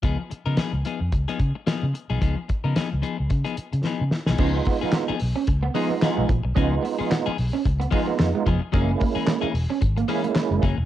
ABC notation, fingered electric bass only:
X:1
M:4/4
L:1/16
Q:"Swing 16ths" 1/4=110
K:Dbmix
V:1 name="Fingered electric bass" clef=bass
D,, z2 D, z D,, z F,, D,, z D, z2 D, z C,, | D,, z2 D, z D,, z D,, D, z2 D, z D, z C,, | D,,2 z4 C,, z D,,2 z3 C,, B,,, C,, | D,,2 z4 C,, z D,,2 z2 F,, z F,,, z |
G,,,2 z4 _F,,, z A,,,2 z3 G,,, G,,, F,,, |]